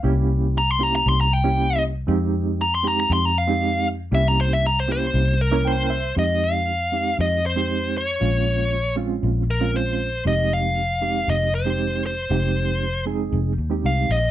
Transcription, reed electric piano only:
\new Staff \with { instrumentName = "Reed electric piano" } { \time 4/4 \key f \minor \tempo 4 = 117 << { r1 | r1 | r2. g''8 e''8 | r1 |
r1 | r1 | r1 | } \\ { <bes des' e' g'>4 r8 <bes des' e' g'>4 r16 <bes des' e' g'>4 r16 | <aes c' ees' g'>4 r8 <aes c' ees' g'>4 r16 <aes c' ees' g'>4 r16 | <bes des' e' g'>4 r8 <bes des' e' g'>4 r16 <bes des' e' bes'>4 r16 | <aes c' ees' g'>4 r8 <aes c' ees' g'>4 r16 <aes c' ees' g'>4 r16 |
<aes bes des' f'>4 r8 <aes c' des' f'>4 r16 <aes c' des' f'>4 r16 | <aes c' ees' g'>4 r8 <aes c' ees' g'>4 r16 <aes c' ees' g'>4 r16 | <aes c' ees' g'>4 r8 <aes c' ees' aes'>4 r16 <aes c' ees' g'>4 r16 | } >> }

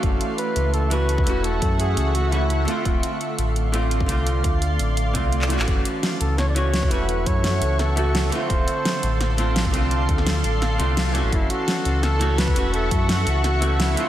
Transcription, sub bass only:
\new Staff \with { instrumentName = "Sub bass" } { \clef bass \time 4/4 \key fis \minor \tempo 4 = 170 fis,,8 r4 cis,2 e,,8~ | e,,8 fis,4 cis,2 r8 | d,,8 r4 a,,2 c,8~ | c,8 d,4 a,,4 c,4~ c,16 a,,16 |
fis,,8 r4 cis,2 e,,8~ | e,,8 fis,4 cis,2 r8 | d,,8 r4 a,,2 c,8~ | c,8 d,4 a,,4 c,4~ c,16 a,,16 |
fis,,8 r4 cis,2 e,,8~ | e,,8 fis,4 cis,2 r8 | }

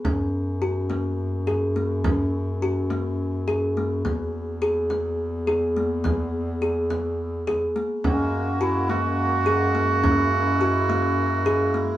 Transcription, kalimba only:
\new Staff \with { instrumentName = "Kalimba" } { \time 7/8 \key fis \mixolydian \tempo 4 = 105 cis'4 fis'8 ais4 gis'8 ais8 | cis'4 fis'8 ais4 gis'8 ais8 | b4 gis'8 b4 gis'8 ais8 | b4 gis'8 b4 gis'8 ais8 |
cis'4 fis'8 ais4 gis'8 ais8 | cis'4 fis'8 ais4 gis'8 ais8 | }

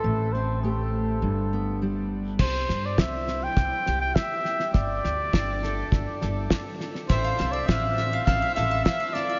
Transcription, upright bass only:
\new Staff \with { instrumentName = "Upright bass" } { \clef bass \time 4/4 \key c \major \tempo 4 = 102 a,,2 g,,2 | c,8 g,8 c,4 c,16 r16 c,8 r4 | g,,8 d,8 g,,4 g,,16 r16 g,,8 r4 | a,,8 c,8 a,,4 a,,16 r16 a,,8 r4 | }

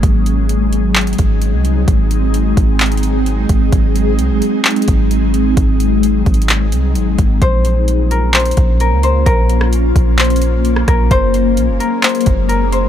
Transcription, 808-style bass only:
\new Staff \with { instrumentName = "808-style bass" } { \clef bass \time 4/4 \key bes \minor \tempo 4 = 130 aes,,2~ aes,,8 aes,,8. c,8. | aes,,4. aes,,2 aes,,8 | aes,,4 c,16 aes,,16 r4 aes,,4. | aes,,4. aes,,4 c,8 aes,,8 aes,,8 |
bes,,2~ bes,,8 bes,,8. des,8. | bes,,4. bes,,2 bes,,8 | ges,,4 bes,,16 ges,,16 r4 ges,,4. | }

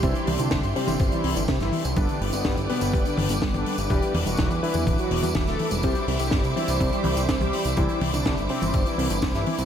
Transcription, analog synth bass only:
\new Staff \with { instrumentName = "Analog synth bass" } { \clef bass \time 4/4 \key c \lydian \tempo 4 = 124 c,16 r16 c,16 c,16 c,16 g,,16 r16 g,,16 g,,16 r16 c,16 g,,16 c,16 g,,16 r16 c,16 | g,,16 r16 g,,16 g,,16 g,16 g,,16 r16 g,,16 g,,16 r16 g,,16 g,,16 g,,16 g,,16 r16 g,,16 | e,,16 r16 e,,16 e,,16 e,,16 e,16 r16 e,16 d,,16 r16 e,,16 e,16 e,,16 d,,16 r16 e,,16 | c,16 r16 c,16 c,16 g,,16 c,16 r16 c,16 c,16 r16 c,16 c,16 c,16 c,16 r16 c,16 |
c,16 r16 c,16 c,16 c,16 g,,16 r16 g,,16 g,,16 r16 c,16 g,,16 c,16 g,,16 r16 c,16 | }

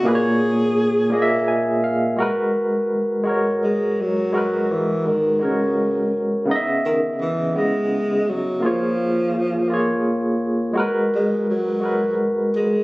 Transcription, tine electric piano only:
\new Staff \with { instrumentName = "Tine electric piano" } { \time 6/8 \key gis \minor \tempo 4. = 56 << { r2 gis''8 eis''8 | r2. | r2. | r2. |
r2. | r2. | } \\ { <ais, ais gis' b' cis''>4. <ais, ais gis' dis'' e''>4. | <gis fis' ais' b'>4. <gis fis' ais' cis''>4. | <gis fis' ais' b'>4. <gis fis' ais' cis''>4. | <cis b dis' dis'' e''>4. <cis b e' dis''>4. |
<ais eis' gis' cis''>4. <ais eis' gis' cis''>4. | <gis fis' ais' b'>4. <gis fis' ais' b'>4. | } >> }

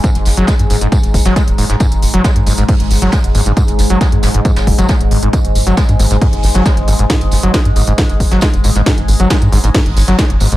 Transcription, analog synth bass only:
\new Staff \with { instrumentName = "Analog synth bass" } { \clef bass \time 4/4 \key fis \dorian \tempo 4 = 136 r16 gis,,16 gis,,16 gis,,16 r16 gis,16 gis,,16 gis,,16 r16 gis,,16 gis,,16 gis,,16 r16 fis,,16 gis,,16 gis,,16 | r16 gis,,16 gis,,16 gis,,16 r16 gis,16 gis,,16 gis,,16 r16 gis,,16 gis,,16 gis,,16 r16 fis,,16 gis,,16 gis,,16 | r16 gis,,16 gis,,16 gis,,16 r16 gis,16 gis,,16 gis,,16 r16 gis,,16 gis,,16 gis,,16 r16 fis,,16 gis,,16 gis,,16 | r16 gis,,16 gis,,16 gis,,16 r16 gis,16 gis,,16 gis,,16 r16 gis,,16 gis,,16 gis,,16 r16 gis,,16 gis,,16 gis,,16 |
r16 gis,,16 gis,,16 gis,,16 r16 gis,16 gis,,16 gis,,16 r16 gis,,16 gis,,16 gis,,16 r16 fis,,16 gis,,16 gis,,16 | r16 gis,,16 gis,,16 gis,,16 r16 gis,16 gis,,16 gis,,16 r16 gis,,16 gis,,16 gis,,16 r16 fis,,16 gis,,16 gis,,16 | }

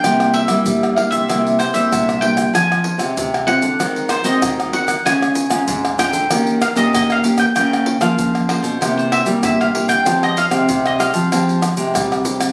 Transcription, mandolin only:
\new Staff \with { instrumentName = "Mandolin" } { \time 4/4 \key f \minor \tempo 4 = 96 g''8 e''4 f''16 e''8. c''16 e''8. g''8 | aes''4. ges''4 c''16 ees''8. ges''8 | aes''4. g''4 f''16 ees''16 ees''16 f''8 g''16 | g''8. f''8. c''8. c''16 e''8 e''16 f''8 g''16~ |
g''16 ees''16 f''8. ees''16 f''2 r8 | }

